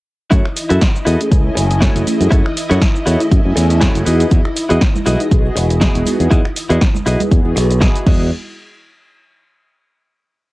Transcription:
0.31 F#2 A3 C#4 E4 F#4 G#4 A4 C#5 D#5, kick, closed hi-hat, shaker
0.45 finger snap
0.56 muted clean electric guitar stroke, open hi-hat, shaker
0.69 F#2 E4 F#4 A4 E5, closed hi-hat, shaker
0.81 kick, snare, closed hi-hat, shaker
0.94 muted clean electric guitar stroke, shaker
1.05 E2 E4 F#4 A4 D#5, open hi-hat, shaker
1.20 A3 C#4 E4 G#4, closed hi-hat, shaker
1.31 C#2 A3 C#4 E4 G#5, muted clean electric guitar stroke, kick, closed hi-hat, shaker
1.55 F#1, muted clean electric guitar stroke, open hi-hat, shaker
1.69 A3 C#4 E4 G#5, muted clean electric guitar stroke, closed hi-hat, shaker
1.81 E4 F#4 A4 C#5, kick, snare, closed hi-hat, shaker
1.95 F#1, closed hi-hat, shaker
2.07 A3 C#4 E4 G#4, muted fingered electric bass stroke, open hi-hat, shaker
2.21 F#2, closed hi-hat, shaker
2.31 F#2 A3 C#4 E4 F#4 G#4 A4 C#5, kick, closed hi-hat, shaker
2.46 finger snap
2.56 muted clean electric guitar stroke, open hi-hat, shaker
2.70 F#2 E4 F#4 A4 C#5, closed hi-hat, shaker
2.82 kick, snare, closed hi-hat, shaker
2.94 muted clean electric guitar stroke, shaker
3.06 E2 E4 F#4 A4 C#5, open hi-hat, shaker
3.20 A3 C#4 E4 G#4, closed hi-hat, shaker
3.31 F#2 A3 C#4 E4 G#5, muted clean electric guitar stroke, kick, closed hi-hat, shaker
3.45 F#2
3.56 E2, muted clean electric guitar stroke, open hi-hat, shaker
3.69 A3 C#4 E4 G#5, muted clean electric guitar stroke, closed hi-hat, shaker
3.81 E4 F#4 A4 C#5, kick, snare, closed hi-hat, shaker
3.95 F#1, closed hi-hat, shaker
4.05 E2 B3 D#4 E4 F#4 G#4 D#5, open hi-hat, shaker
4.20 closed hi-hat, shaker
4.31 E2 B3 D#4 F#4 G#4, kick, closed hi-hat, shaker
4.45 finger snap, shaker
4.56 muted clean electric guitar stroke, open hi-hat, shaker
4.69 E2 E4 F#4 G#4 D#5, closed hi-hat, shaker
4.81 kick, snare, closed hi-hat, shaker
4.95 muted clean electric guitar stroke, high conga, shaker
5.06 B1 E4 F#4 G#4 D#5, open hi-hat, shaker
5.20 B3 D#4 F#4 G#4, closed hi-hat, shaker
5.31 B1 B3 F#4 G#4 D#5, muted clean electric guitar stroke, kick, closed hi-hat, shaker
5.45 shaker
5.56 E1, muted clean electric guitar stroke, open hi-hat, shaker
5.69 B3 F#4 G#4 D#5, muted clean electric guitar stroke, closed hi-hat, shaker
5.81 E4 F#4 G#4 D#5, kick, snare, closed hi-hat, shaker
5.95 E1, closed hi-hat, shaker
6.06 B3 D#4 F#4 G#4, muted fingered electric bass stroke, open hi-hat, high conga, shaker
6.20 E2, closed hi-hat, shaker
6.31 E2 B3 D#4 E4 F#4 G#4 D#5, kick, closed hi-hat, shaker
6.45 finger snap, shaker
6.56 muted clean electric guitar stroke, open hi-hat, shaker
6.70 E2 E4 F#4 G#4 D#5, closed hi-hat, shaker
6.81 kick, snare, closed hi-hat, shaker
6.95 muted clean electric guitar stroke, high conga, shaker
7.06 B1 E4 F#4 G#4 D#5, open hi-hat, shaker
7.20 B3 D#4 F#4 G#4, closed hi-hat, high conga, shaker
7.31 E2 B3 F#4 G#4, muted clean electric guitar stroke, kick, closed hi-hat, shaker
7.45 E2, shaker
7.56 B1, muted clean electric guitar stroke, open hi-hat, shaker
7.70 B3 F#4 G#4, muted clean electric guitar stroke, closed hi-hat, shaker
7.81 E4 F#4 G#4 D#5, kick, snare, closed hi-hat, shaker
7.96 closed hi-hat, shaker
8.06 E2 B3 D#4 F#4 G#4 D#5, kick, crash, high conga, shaker
8.21 shaker

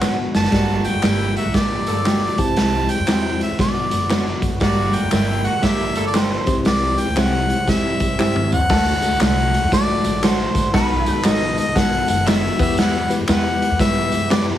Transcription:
Already playing: A1 B2 D3 B3 F#4
0.01 F#3 B3 D4 F#4, snare, clap, tambourine
0.34 F#1 A5, snare, tambourine
0.44 snare
0.52 G1 G2 D3 G3 A#3 D4 F#4, kick, snare, closed hi-hat, tambourine
0.78 A5
0.84 G5, closed hi-hat, tambourine
0.94 F#1
1.02 G1 E3 G3 A#3 C4 D4 E4 G4, snare, clap, closed hi-hat, tambourine
1.36 F#3 D4 F#4 E5, closed hi-hat, tambourine
1.45 A#1
1.53 A1 D3 A#3 D4 G4 D5, kick, snare, closed hi-hat, tambourine
1.87 G1 D3 A#3 A4, closed hi-hat, tambourine
2.05 G3 A#3 D4 F#4 G4, snare, clap, closed hi-hat, tambourine
2.38 C2 C3 E3 C4 E4 G4 A5, kick, closed hi-hat, tambourine
2.56 snare, closed hi-hat, tambourine
2.89 G5, closed hi-hat, tambourine
2.99 F#2
3.07 E2 G3 C4 E4 F#4 G4, snare, clap, closed hi-hat, tambourine
3.41 E5, closed hi-hat
3.50 E2
3.58 B2 D3 B3 D4 F#4 D5, kick, snare, closed hi-hat, tambourine
3.91 F#1, closed hi-hat, tambourine
4.10 F#3 B3 D4 F#4, snare, clap, closed hi-hat, tambourine
4.42 F#1, kick, closed hi-hat, tambourine
4.60 G1 G2 D3 G3 A#3 D4 F#4 D5, kick, snare, closed hi-hat, tambourine
4.93 G5, closed hi-hat, tambourine
5.02 F#1
5.11 G1 E3 G3 A#3 C4 D4 E4 G4 A#4, snare, clap, closed hi-hat, tambourine
5.44 F#3 D4 F#4 F#5, closed hi-hat, tambourine
5.54 A#1
5.62 A1 D3 A#3 D4 G4 E5, kick, snare, closed hi-hat, tambourine
5.95 G1 D3 A#3 A4, closed hi-hat, tambourine
6.07 D5
6.14 G3 A#3 D4 G4 A4 C5, snare, clap, closed hi-hat, tambourine
6.46 C2 C3 E3 C4 D#4 G4, kick, closed hi-hat, tambourine
6.53 E4
6.65 D5, snare, closed hi-hat, tambourine
6.98 G5, closed hi-hat, tambourine
7.07 D2
7.16 C2 G3 C4 E4 G4 F#5, snare, clap, closed hi-hat, tambourine
7.49 closed hi-hat, tambourine
7.59 C2
7.67 E2 C4 E4 G4 E5, kick, snare, closed hi-hat, tambourine
8.00 C2, kick, closed hi-hat, tambourine
8.18 G1 G3 C4 E4 G4 E5, snare, clap, tambourine
8.36 mid tom
8.51 C#2 F#5, floor tom, tambourine
8.69 D2 D3 A3 D4 F#4 A4, kick, snare, crash, tambourine
9.02 A3 D4 F#4 A4, closed hi-hat, tambourine
9.11 C2
9.20 C2 A3 D4 F#4 A4 F#5, snare, clap, closed hi-hat, tambourine
9.53 closed hi-hat, tambourine
9.63 E2
9.72 D2 A3 D4 F#4 A4 D5, kick, snare, closed hi-hat, tambourine
10.04 A1, closed hi-hat, tambourine
10.22 A3 D4 F#4 A4 C5, snare, clap, closed hi-hat, tambourine
10.55 A#1, kick, snare, closed hi-hat, tambourine
10.73 B1 B2 D#3 B3 D#4 F#4 A4 B4, kick, snare, closed hi-hat
11.06 B3 D#4 F#4 A4, closed hi-hat, tambourine
11.15 A1
11.24 A1 F#3 B3 D#4 F#4 A4 B4 D#5, snare, clap, closed hi-hat, tambourine
11.57 D#5, closed hi-hat, tambourine
11.66 C2
11.75 B1 B3 D#4 F#4 A4 F#5, kick, snare, closed hi-hat, tambourine
11.93 closed hi-hat
12.08 F#1 F#5, closed hi-hat, tambourine
12.26 F#3 B3 D#4 F#4 A4 E5, snare, clap, closed hi-hat, tambourine
12.59 E2 E3 B3 E4 G4 B4 E5, kick, snare, tambourine, crash
12.77 B2 G3 E4 F#5, snare, closed hi-hat, tambourine
13.09 B3 E4 G4 B4, closed hi-hat, tambourine
13.19 F#2
13.28 E2 B3 E4 G4 B4 F#5, snare, clap, closed hi-hat, tambourine
13.62 closed hi-hat
13.70 E2
13.79 G2 B3 E4 G4 B4 E5, kick, snare, closed hi-hat, tambourine
14.11 F#2, closed hi-hat, tambourine
14.30 B3 E4 G4 B4 D5, snare, clap, closed hi-hat, tambourine

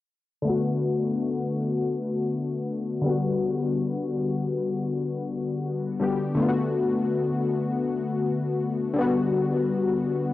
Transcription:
0.42 D3 A3
0.47 B3 F#4
3.01 D3 G3
3.06 B3 F#4
6.00 D3 G3 B3 G4
6.35 D3 A3
6.39 B3 F4
6.48 F#4
8.94 D3 G3
8.99 B3 F#4

